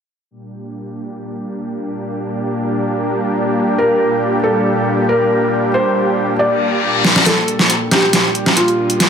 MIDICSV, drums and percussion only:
0, 0, Header, 1, 2, 480
1, 0, Start_track
1, 0, Key_signature, -2, "minor"
1, 0, Tempo, 434783
1, 338, Time_signature, 4, 2, 24, 8
1, 10040, End_track
2, 0, Start_track
2, 0, Title_t, "Drums"
2, 7778, Note_on_c, 9, 38, 58
2, 7888, Note_off_c, 9, 38, 0
2, 7904, Note_on_c, 9, 38, 68
2, 8014, Note_off_c, 9, 38, 0
2, 8018, Note_on_c, 9, 38, 47
2, 8018, Note_on_c, 9, 42, 81
2, 8129, Note_off_c, 9, 38, 0
2, 8129, Note_off_c, 9, 42, 0
2, 8258, Note_on_c, 9, 42, 52
2, 8369, Note_off_c, 9, 42, 0
2, 8383, Note_on_c, 9, 38, 42
2, 8494, Note_off_c, 9, 38, 0
2, 8497, Note_on_c, 9, 42, 77
2, 8608, Note_off_c, 9, 42, 0
2, 8737, Note_on_c, 9, 38, 47
2, 8737, Note_on_c, 9, 42, 51
2, 8848, Note_off_c, 9, 38, 0
2, 8848, Note_off_c, 9, 42, 0
2, 8977, Note_on_c, 9, 38, 47
2, 8977, Note_on_c, 9, 42, 77
2, 9088, Note_off_c, 9, 38, 0
2, 9088, Note_off_c, 9, 42, 0
2, 9218, Note_on_c, 9, 42, 52
2, 9328, Note_off_c, 9, 42, 0
2, 9343, Note_on_c, 9, 38, 43
2, 9454, Note_off_c, 9, 38, 0
2, 9458, Note_on_c, 9, 42, 79
2, 9568, Note_off_c, 9, 42, 0
2, 9583, Note_on_c, 9, 42, 37
2, 9694, Note_off_c, 9, 42, 0
2, 9823, Note_on_c, 9, 42, 63
2, 9933, Note_off_c, 9, 42, 0
2, 9937, Note_on_c, 9, 38, 51
2, 9937, Note_on_c, 9, 42, 78
2, 10040, Note_off_c, 9, 38, 0
2, 10040, Note_off_c, 9, 42, 0
2, 10040, End_track
0, 0, End_of_file